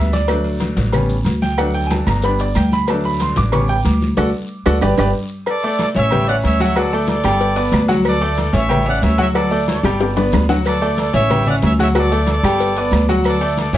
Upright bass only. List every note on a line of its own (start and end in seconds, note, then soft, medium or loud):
0.00 0.72 D2 medium
0.76 1.22 A1 medium
1.24 2.01 D2 medium
2.07 2.52 G1 loud
2.55 3.31 D2 medium
3.36 3.82 A1 medium
3.85 4.15 D2 medium
4.17 4.29 D2 loud
4.66 4.78 D2 medium
4.82 4.94 G1 medium
4.98 5.10 G1 loud
5.96 6.41 A1 medium
6.44 7.19 D2 medium
7.24 7.70 G1 loud
7.72 8.48 D2 medium
8.53 8.99 A1 loud
9.02 9.78 D2 medium
9.83 10.29 G1 medium
10.33 11.08 D2 medium
11.14 11.59 A1 medium
11.62 12.38 D2 medium
12.43 12.89 G1 medium
12.91 13.67 D2 medium
13.73 13.78 A1 medium